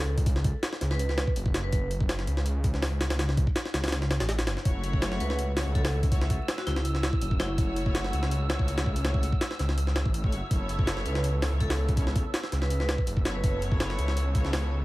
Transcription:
Already playing: C#2 A4
0.18 kick, open hi-hat
0.26 kick, open hi-hat
0.36 snare
0.44 kick, open hi-hat
0.63 snare, open hi-hat
0.73 snare
0.81 C#2, snare, open hi-hat
0.91 B4, snare
0.99 open hi-hat
1.09 B4, snare
1.18 snare, open hi-hat
1.27 kick
1.36 F#1, open hi-hat
1.46 kick
1.54 snare, open hi-hat
1.64 B4
1.72 F#1 B4, kick, open hi-hat
1.91 open hi-hat
2.01 kick
2.09 snare, open hi-hat
2.19 snare
2.27 C#2, open hi-hat
2.37 snare
2.46 open hi-hat
2.64 kick, open hi-hat
2.74 C#2, snare
2.82 snare, open hi-hat
3.01 snare, open hi-hat
3.10 snare, open hi-hat
3.19 snare, open hi-hat
3.29 snare
3.37 kick, open hi-hat
3.47 kick
3.56 snare, open hi-hat
3.65 snare
3.74 C#2, snare, open hi-hat
3.84 snare, open hi-hat
3.88 snare, open hi-hat
3.92 snare, open hi-hat
4.02 snare
4.11 snare, open hi-hat
4.20 A1, snare, open hi-hat
4.29 A1, snare, open hi-hat
4.39 snare, open hi-hat
4.47 F#1, snare, open hi-hat
4.57 snare
4.65 F#1 A3 E4 F#4 C#5 E6, kick, open hi-hat
4.84 open hi-hat
4.93 kick
5.02 snare, open hi-hat
5.12 snare
5.20 C#2 B4, open hi-hat
5.30 B4, snare
5.39 open hi-hat
5.57 A3 E4 F#4 C#5, snare, open hi-hat
5.67 C#2
5.75 A4, kick, open hi-hat
5.85 snare, open hi-hat
6.03 kick, open hi-hat
6.12 A3 E4 F#4 C#5, kick, open hi-hat
6.21 snare
6.30 kick, open hi-hat
6.48 snare, open hi-hat
6.58 F#4, snare
6.67 C#2 E4, snare, open hi-hat
6.76 snare
6.85 open hi-hat
6.95 snare
7.03 snare, open hi-hat
7.13 kick
7.21 F#1, open hi-hat
7.31 kick
7.39 A3 E4 F#4 C#5, snare, open hi-hat
7.58 F#1 A3 E4 F#4 C#5, kick, open hi-hat
7.76 open hi-hat
7.86 kick
7.95 snare, open hi-hat
8.04 snare
8.13 C#2, open hi-hat
8.23 snare
8.31 open hi-hat
8.49 A3 E4 F#4 C#5, snare, open hi-hat
8.59 C#2, kick
8.68 open hi-hat
8.78 snare, open hi-hat
8.86 kick
8.96 open hi-hat
9.04 A3 E4 F#4 C#5, snare, open hi-hat
9.14 kick
9.23 open hi-hat
9.33 kick
9.41 snare, open hi-hat
9.51 snare
9.59 C#2, snare, open hi-hat
9.69 snare
9.78 open hi-hat
9.87 snare
9.96 snare, open hi-hat
10.06 A1, kick
10.14 A1, open hi-hat
10.24 A3 E4 F#4 C#5, kick
10.32 F#1, open hi-hat
10.51 F#1 B3 E4 A4 C#5, kick, open hi-hat
10.69 open hi-hat
10.79 kick
10.87 snare, open hi-hat
10.97 snare
11.06 C#2 B4, open hi-hat
11.15 B4, snare
11.24 open hi-hat
11.42 B3 E4 A4 C#5, snare, open hi-hat
11.52 C#2
11.60 A4, kick, open hi-hat
11.70 snare, open hi-hat
11.89 kick, open hi-hat
11.97 B3 E4 A4 C#5, kick, open hi-hat
12.07 snare
12.16 kick, open hi-hat
12.34 snare, open hi-hat
12.44 snare
12.52 C#2, snare, open hi-hat
12.62 B4, snare
12.70 open hi-hat
12.80 B4, snare
12.89 snare, open hi-hat
12.98 kick
13.07 F#1, open hi-hat
13.17 kick
13.25 B3 E4 A4 C#5, snare, open hi-hat
13.35 B4
13.43 F#1 B3 E4 A4 B4 C#5, kick, open hi-hat
13.62 open hi-hat
13.72 kick
13.80 snare, open hi-hat
13.90 snare
13.98 C#2, open hi-hat
14.08 snare
14.17 open hi-hat
14.35 B3 E4 A4 C#5, kick, open hi-hat
14.45 C#2, snare
14.53 snare, open hi-hat

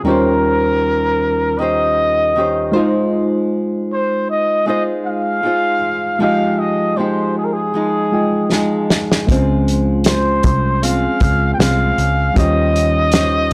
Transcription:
0.03 D#2 D#3 G3 C#4 F4 A#4
0.08 G4 C5
1.59 D#3 C#4 G4 C5 D#5
2.36 D#3 C#4 G4 C5
2.72 G#3 D#4 F4 C5
2.77 G#3 D#4 C5
3.93 C5
4.30 D#5
4.66 G#3 D#4 F4 C5 D#5
5.06 F5
5.43 G#3 D#4 F4 C5
6.19 F3 G#3 D#4 F4 G4 F5 G5
6.24 D#5
6.60 D#5
6.97 F3 G#3 D#4 G4 C5
7.38 G#4
7.45 A#4
7.53 G#4
7.74 F3 G#3 D#4
8.12 G#3 F4 D#5 G5
8.51 F3 G#3 D#4, snare
8.90 snare
9.12 snare
9.27 C#2 G#3 C#4 F4, kick, closed hi-hat
9.31 C4 F4 C5
9.68 closed hi-hat
10.04 C5, snare, closed hi-hat
10.43 C2, kick, closed hi-hat
10.83 G#3 C4 F4 F5, closed hi-hat
11.20 C#2, kick, closed hi-hat
11.54 G5
11.59 C2 G#3 C4 F4 F5, snare, closed hi-hat
11.98 C#2, closed hi-hat
12.34 D#2 D#3 G3 C#4 F4 G4 D#5, kick, closed hi-hat
12.39 C5 C#5
12.76 closed hi-hat
13.12 D#3 C#4, snare, closed hi-hat
13.16 G4 C5

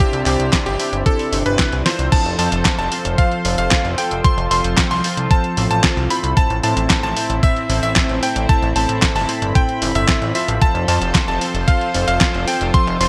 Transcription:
Already playing: C3 C4 D4 E4 G4 C5
0.00 G4, kick, closed hi-hat
0.13 C2, closed hi-hat
0.26 C2 C3 D4 E4 G4 C5, clap, open hi-hat
0.40 C2, closed hi-hat
0.53 kick, snare, clap, closed hi-hat
0.66 G1 G4, closed hi-hat
0.80 C3 D4 E4 G4 C5, open hi-hat
0.93 G1, closed hi-hat
1.06 A4, kick, closed hi-hat
1.19 open hi-hat
1.32 G1 C3 D4 E4 G4 C5, open hi-hat
1.46 G1 C3 D4 E4 G4 B4 C5, closed hi-hat
1.59 kick, snare, clap, closed hi-hat
1.72 C2, closed hi-hat
1.86 F3 C4 F4 A4 C5, snare, open hi-hat
1.99 C2, closed hi-hat
2.12 F3 F4 A4 C5 A5, kick, closed hi-hat, crash
2.25 F1, closed hi-hat
2.39 F2 F3 C4 F4 A4 C5 A5, open hi-hat
2.52 F1, closed hi-hat
2.65 kick, snare, clap, closed hi-hat
2.79 F1 A5, closed hi-hat
2.92 F3 C4 F4 A4 C5, open hi-hat
3.05 F1, closed hi-hat
3.18 F5, kick, closed hi-hat
3.32 closed hi-hat
3.45 F1 F3 C4 F4 A4 C5, open hi-hat
3.58 F1 F5, closed hi-hat
3.71 kick, snare, clap, closed hi-hat
3.85 F1, closed hi-hat
3.98 F3 C4 F4 A4 C5 G5, open hi-hat
4.11 F1, closed hi-hat
4.24 C6, kick, closed hi-hat
4.38 F1, closed hi-hat
4.51 F1 F3 C4 F4 A4 C5 C6, open hi-hat
4.64 F1, closed hi-hat
4.78 kick, snare, clap, closed hi-hat
4.91 C2 C6, open hi-hat
5.04 F3 C4 F4 A4 C5, open hi-hat
5.17 C2, closed hi-hat
5.31 A5, kick, closed hi-hat
5.44 closed hi-hat
5.57 A1 F3 C4 F4 A4 C5, open hi-hat
5.71 A1 A5, closed hi-hat
5.84 kick, snare, clap, closed hi-hat
5.97 C2, closed hi-hat
6.10 A2 C4 E4 A4 C5 B5, open hi-hat
6.24 C2, closed hi-hat
6.37 C4 E4 A5, kick, closed hi-hat
6.50 A1, closed hi-hat
6.63 A2 C4 E4 A4 C5 A5, open hi-hat
6.77 A1, closed hi-hat
6.90 kick, snare, clap, closed hi-hat
7.03 A1 A5, closed hi-hat
7.17 A2 C4 E4 A4 C5, open hi-hat
7.30 A1, closed hi-hat
7.43 E5, kick, closed hi-hat
7.56 closed hi-hat
7.70 A1 A2 C4 E4 A4 C5, open hi-hat
7.83 A1 E5, closed hi-hat
7.96 kick, snare, clap, closed hi-hat
8.09 A1, closed hi-hat
8.23 A2 C4 E4 A4 C5 G5, open hi-hat
8.36 A1, closed hi-hat
8.49 A5 B5, kick, closed hi-hat
8.62 A1, closed hi-hat
8.76 A1 A2 C4 E4 A4 C5 A5, open hi-hat
8.89 A1, closed hi-hat
9.02 kick, snare, clap, closed hi-hat
9.15 G1 A5, open hi-hat
9.29 A2 C4 E4 A4 C5, open hi-hat
9.42 G1, closed hi-hat
9.55 G5, kick, closed hi-hat
9.69 closed hi-hat
9.82 G1 A2 C4 E4 A4 C5, open hi-hat
9.95 G1 A2 C4 E4 A4 C5 E5, closed hi-hat
10.08 kick, snare, clap, closed hi-hat
10.22 A1, closed hi-hat
10.35 F3 C4 F4 A4 C5 E5, open hi-hat
10.48 A1, closed hi-hat
10.62 F3 F4 A4 C5 A5, kick, closed hi-hat
10.75 F1, closed hi-hat
10.88 F2 F3 C4 F4 A4 C5 A5, open hi-hat
11.01 F1, closed hi-hat
11.15 kick, snare, clap, closed hi-hat
11.28 F1 A5, closed hi-hat
11.41 F3 C4 F4 A4 C5, open hi-hat
11.54 F1, closed hi-hat
11.68 F5, kick, closed hi-hat
11.81 closed hi-hat
11.94 F1 F3 C4 F4 A4 C5, open hi-hat
12.08 F1 F5, closed hi-hat
12.21 kick, snare, clap, closed hi-hat
12.34 F1, closed hi-hat
12.48 F3 C4 F4 A4 C5 G5, open hi-hat
12.61 F1, closed hi-hat
12.74 C6, kick, closed hi-hat
12.87 F1, closed hi-hat
13.01 F1 F3 C4 F4 A4 C5 C6, open hi-hat

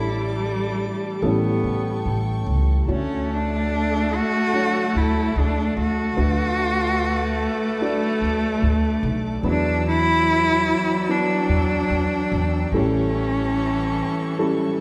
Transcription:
Already playing: A1 A2 G3 D4 E4 A4 E5 D6
1.22 A1 A2 G3 B3 C#4 E4 A4 G5 C#6
1.64 A1
2.05 A1
2.46 C#2
2.88 D2 D3 A3 C#4 F#4 A4 C#5 F#5 A5
3.34 D4
4.15 F#4
4.53 A3 D4 F#4 C#5
4.95 D2 E4
5.36 D2 D4
5.77 D2 F#4
6.16 D2 D3 A3 D4 F#4 B4 A5 D6
7.81 A3 D4 F#4 D5
8.21 D2
8.62 D2
9.03 B1
9.43 E2 E3 F#3 B3 D4 E4 B4 D5 G5 E6
9.49 D4
9.88 E4
11.09 B3 D4 E4 B4
11.49 E2
11.90 E2
12.32 E2
12.72 A1 A2 E3 G3 C#4 E4 A4 C#6
14.38 G3 C#4 E4 A4

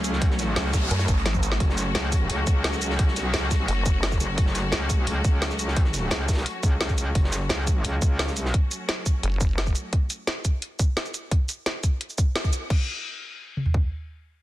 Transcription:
Already playing: C#2 F#3 A3 C#4 G#4
0.04 closed hi-hat, shaker
0.13 snare
0.21 F#4, kick, closed hi-hat, noise sweep
0.30 snare
0.39 snare, closed hi-hat, shaker
0.56 C#2, snare, closed hi-hat
0.73 kick, snare, closed hi-hat, shaker
0.91 F#2, closed hi-hat
0.99 snare, closed hi-hat, shaker
1.08 G#1, kick, closed hi-hat, shaker
1.17 closed hi-hat
1.25 snare, closed hi-hat, high tom
1.34 kick, high tom, shaker
1.43 closed hi-hat, shaker
1.52 snare
1.60 F#1, kick, closed hi-hat
1.70 snare
1.78 snare, closed hi-hat, shaker
1.95 C#2, snare, closed hi-hat
2.12 kick, closed hi-hat, shaker
2.29 C#2, closed hi-hat
2.47 C#2, kick, closed hi-hat, shaker
2.64 snare, closed hi-hat
2.73 snare, shaker
2.82 closed hi-hat, shaker
2.90 snare
2.99 kick, closed hi-hat
3.07 C2, snare
3.16 snare, closed hi-hat, shaker
3.34 C#2, snare, closed hi-hat
3.51 kick, snare, closed hi-hat, shaker
3.68 F#1, closed hi-hat
3.85 kick, closed hi-hat, shaker
4.03 snare, closed hi-hat
4.12 kick, snare, shaker
4.20 F#1, closed hi-hat, shaker
4.38 F#1, kick, closed hi-hat
4.46 snare
4.55 snare, closed hi-hat, shaker
4.72 C#2, snare, closed hi-hat
4.90 kick, closed hi-hat, shaker
5.07 C#2, closed hi-hat
5.25 C#2, kick, closed hi-hat, shaker
5.42 snare, closed hi-hat
5.50 snare, shaker
5.59 closed hi-hat, shaker
5.68 snare
5.76 kick, closed hi-hat
5.85 snare
5.94 snare, closed hi-hat, shaker
6.11 C#2, snare, closed hi-hat
6.29 kick, snare, closed hi-hat, shaker
6.33 snare, closed hi-hat
6.37 snare, closed hi-hat
6.46 closed hi-hat
6.63 C#2, kick, closed hi-hat, shaker
6.80 snare, closed hi-hat
6.89 kick, snare, shaker
6.98 closed hi-hat, shaker
7.15 F#1, kick, closed hi-hat
7.24 snare
7.32 snare, closed hi-hat, shaker
7.49 C#2, snare, closed hi-hat
7.67 kick, closed hi-hat, shaker
7.84 C#2, closed hi-hat
8.02 C#2, kick, closed hi-hat, shaker
8.19 snare, closed hi-hat
8.28 snare, shaker
8.36 closed hi-hat, shaker
8.45 snare
8.54 kick, closed hi-hat
8.71 closed hi-hat, shaker
8.89 snare, closed hi-hat
9.06 kick, closed hi-hat, shaker
9.23 F#1, closed hi-hat
9.41 kick, closed hi-hat, shaker
9.58 snare, closed hi-hat
9.67 kick, shaker
9.75 closed hi-hat, shaker
9.93 kick, closed hi-hat
10.10 closed hi-hat, shaker
10.27 snare, closed hi-hat
10.45 kick, closed hi-hat, shaker
10.62 closed hi-hat
10.79 kick, closed hi-hat, shaker
10.97 snare, closed hi-hat
11.05 shaker
11.14 closed hi-hat, shaker
11.31 kick, closed hi-hat
11.49 closed hi-hat, shaker
11.66 snare, closed hi-hat
11.83 kick, closed hi-hat, shaker
12.01 closed hi-hat
12.10 shaker
12.18 kick, closed hi-hat, shaker
12.36 snare, closed hi-hat
12.44 kick, shaker
12.53 closed hi-hat, shaker
12.70 kick, crash
13.57 mid tom
13.66 floor tom
13.74 kick

